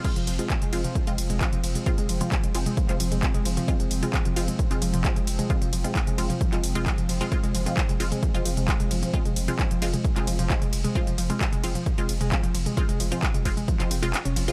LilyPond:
<<
  \new Staff \with { instrumentName = "Synth stab" } { \time 4/4 \key f \minor \tempo 4 = 132 <aes c' f'>16 r8 <aes c' f'>16 r8 <aes c' f'>16 r8 <aes c' f'>16 r8 <aes c' f'>16 r8. | <aes c' f'>16 r8 <aes c' f'>16 r8 <aes c' f'>16 r8 <aes c' f'>16 r8 <aes c' f'>16 r8. | <aes c' f'>16 r8 <aes c' f'>16 r8 <aes c' f'>16 r8 <aes c' f'>16 r8 <aes c' f'>16 r8. | <aes c' f'>16 r8 <aes c' f'>16 r8 <aes c' f'>16 r8 <aes c' f'>16 r16 <aes c' f'>16 r8. <aes c' f'>16 |
<aes c' f'>16 r8 <aes c' f'>16 r8 <aes c' f'>16 r8 <aes c' f'>16 r8 <aes c' f'>16 r8. | <aes c' f'>16 r8 <aes c' f'>16 r8 <aes c' f'>16 r8 <aes c' f'>16 r8 <aes c' f'>16 r8. | <aes c' f'>16 r8 <aes c' f'>16 r8 <aes c' f'>16 r8 <aes c' f'>16 r8 <aes c' f'>16 r8. | <aes c' f'>16 r8 <aes c' f'>16 r8 <aes c' f'>16 r8 <aes c' f'>16 r16 <aes c' f'>16 r8. <aes c' f'>16 | }
  \new Staff \with { instrumentName = "Ambient pad" } { \clef bass \time 4/4 \key f \minor <f c'>1~ | <f c'>1~ | <f c'>1~ | <f c'>1~ |
<f c'>1~ | <f c'>1~ | <f c'>1~ | <f c'>1 | }
  \new Staff \with { instrumentName = "Synth arpeggio sound" } { \clef bass \time 4/4 \key f \minor f16 f16 f16 aes16 r16 aes16 f16 f16 f16 aes16 r16 aes16 f16 f16 f16 aes16 | r16 aes16 f16 f16 r16 aes16 r16 aes16 f16 f16 f16 aes16 r16 aes16 f16 f16 | f16 aes16 r16 aes16 f16 f16 f16 aes16 r16 aes16 f16 f16 f16 aes16 r16 aes16 | f16 f16 f16 aes16 r16 aes16 f16 f16 f16 aes16 r16 aes16 f16 f16 f16 aes16 |
r16 aes16 f16 f16 f16 aes16 r16 aes16 f16 f16 f16 aes16 r16 aes16 f16 f16 | f16 aes16 r16 aes16 f16 f16 f16 aes16 r16 aes16 f16 f16 f16 aes16 r16 aes16 | f16 f16 f16 aes16 r16 aes16 f16 f16 f16 aes16 r16 aes16 f16 f16 f16 aes16 | r16 aes16 f16 f16 f16 aes16 r16 aes16 f16 f16 c'16 f'16 r16 des'16 f16 r16 | }
  \new Staff \with { instrumentName = "Sub bass" } { \clef bass \time 4/4 \key f \minor r16 f,,16 f,,16 r8 f,,16 f,,16 r8 f,,16 f,,16 f,,16 r16 f,,16 f,,16 r16 | r16 f,,16 f,,16 r8 f,,16 f,,16 r8 f,,16 f,,16 f,,16 r16 f,,16 f,,16 r16 | r16 f,,16 f,,16 r8 f,,16 f,,16 r8 f,,16 f,,16 f,,16 r16 f,,16 f,,16 r16 | r16 f,,16 f,,16 r8 f,,16 f,,16 r8 f,,16 f,,16 f,,16 r16 f,,16 f,,16 r16 |
r16 f,,16 f,,16 r8 f,,16 f,,16 r8 f,,16 f,,16 f,,16 r16 f,,16 f,,16 r16 | r16 f,,16 f,,16 r8 f,,16 f,,16 r8 f,,16 f,,16 f,,16 r16 f,,16 f,,16 r16 | r16 f,,16 f,,16 r8 f,,16 f,,16 r8 f,,16 f,,16 f,,16 r16 f,,16 f,,16 r16 | r16 f,,16 f,,16 r8 f,,16 f,,16 r8 f,,16 f,,16 f,,16 r16 f,,16 f,,16 r16 | }
  \new DrumStaff \with { instrumentName = "Drums" } \drummode { \time 4/4 <cymc hh bd>16 <hh toml>16 <hho cymr>16 <hh toml>16 <hc hh bd>16 <hh toml>16 <hho cymr>16 <hh toml>16 <hh bd>16 <hh toml>16 <hho cymr>16 <hh toml>16 <hc hh bd>16 <hh toml>16 <hho cymr>16 <hh toml>16 | <hh bd>16 <hh toml>16 <hho cymr>16 <hh toml>16 <hc hh bd>16 <hh toml>16 <hho cymr>16 <hh toml>16 <hh bd>16 <hc hh toml>16 <hho cymr>16 <hh toml>16 <hc hh bd>16 <hh toml>16 <hho cymr>16 <hh toml>16 | <hh bd>16 <hh toml>16 <hho cymr>16 <hh toml>16 <hc hh bd>16 <hh toml>16 <hho cymr>16 <hh toml>16 <hh bd>16 <hh toml>16 <hho cymr>16 <hh toml>16 <hc hh bd>16 <hh toml>16 <hho cymr>16 <hh toml>16 | <hh bd>16 <hh toml>16 <hho cymr>16 <hh toml>16 <hc hh bd>16 <hh toml>16 <hho cymr>16 <hh toml>16 <hh bd>16 <hc hh toml>16 <hho cymr>16 <hh toml>16 <hc hh bd>16 <hh toml>16 <hho cymr>16 <hh toml>16 |
<hh bd>16 <hh toml>16 <hho cymr>16 <hh toml>16 <hc hh bd>16 <hh toml>16 <hho cymr>16 <hh toml>16 <hh bd>16 <hh toml>16 <hho cymr>16 <hh toml>16 <hc hh bd>16 <hh toml>16 <hho cymr>16 <hh toml>16 | <hh bd>16 <hh toml>16 <hho cymr>16 <hh toml>16 <hc hh bd>16 <hh toml>16 <hho cymr>16 <hh toml>16 <hh bd>16 <hc hh toml>16 <hho cymr>16 <hh toml>16 <hc hh bd>16 <hh toml>16 <hho cymr>16 <hh toml>16 | <hh bd>16 <hh toml>16 <hho cymr>16 <hh toml>16 <hc hh bd>16 <hh toml>16 <hho cymr>16 <hh toml>16 <hh bd>16 <hh toml>16 <hho cymr>16 <hh toml>16 <hc hh bd>16 <hh toml>16 <hho cymr>16 <hh toml>16 | <hh bd>16 <hh toml>16 <hho cymr>16 <hh toml>16 <hc hh bd>16 <hh toml>16 <hho bd cymr>16 <hh toml>16 <hh bd>16 <hc hh toml>16 <hho cymr>16 <hh toml>16 <hc hh>16 <hh toml>16 <hho cymr>16 <hh toml>16 | }
>>